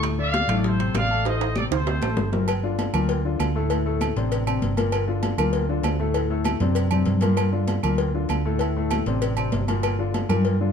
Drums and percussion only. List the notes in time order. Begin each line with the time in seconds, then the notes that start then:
0.03 high bongo, high conga, high timbale, claves
0.18 high conga
0.34 high bongo, high conga, high timbale
0.49 high conga, low conga, high timbale, claves
0.64 high bongo, high conga, low conga
0.80 high conga, high timbale
0.94 high bongo, low bongo, high conga, high timbale, claves
1.10 high conga
1.25 high bongo, high conga, high timbale
1.41 high conga, high timbale
1.56 high bongo, high conga, claves
1.71 high bongo, high conga, high timbale
1.86 high bongo, high conga, low timbale
2.02 high bongo, high conga, low timbale, claves
2.17 high bongo, low bongo, high conga
2.32 high bongo, low conga, low timbale
2.48 cowbell, low agogo, claves
2.63 high conga
2.79 cowbell, high conga, low agogo
2.94 high conga, low conga, low agogo, claves
3.09 cowbell
3.24 high conga
3.39 cowbell, high conga, low agogo, claves
3.55 high conga
3.70 cowbell, high conga, low agogo
3.86 high conga
4.01 cowbell, high conga, low agogo, claves
4.16 cowbell, high conga
4.32 cowbell, high conga, low agogo
4.47 high conga, low agogo, claves
4.62 cowbell, high conga
4.77 cowbell, high conga, low agogo
4.92 cowbell, low agogo, claves
5.08 high conga
5.23 cowbell, high conga, low agogo
5.38 high conga, low conga, low agogo, claves
5.53 cowbell, high conga
5.69 high conga
5.83 cowbell, high conga, low timbale, low agogo, claves
6.00 high conga
6.14 cowbell, high conga, low agogo
6.30 high conga
6.44 cowbell, high conga, low agogo, claves
6.60 cowbell, high conga
6.75 cowbell, low agogo
6.91 low conga, low agogo, claves
7.05 cowbell, low conga
7.21 cowbell, low conga, low agogo
7.37 cowbell, low agogo, claves
7.53 high conga
7.67 cowbell, high conga, low agogo
7.83 high conga, low conga, low agogo, claves
7.98 cowbell
8.15 high conga
8.29 cowbell, high conga, low agogo, claves
8.45 high conga
8.59 cowbell, high conga, low agogo
8.76 high conga
8.90 cowbell, high conga, low agogo, claves
9.06 cowbell, high conga
9.22 cowbell, high conga, low agogo
9.37 high conga, low agogo, claves
9.52 cowbell, high conga, low timbale
9.68 cowbell, high conga, low agogo
9.83 cowbell, high conga, low agogo, claves
9.99 high conga
10.14 cowbell, high conga, low agogo
10.29 high conga, low conga, low agogo, claves
10.45 cowbell
10.61 high conga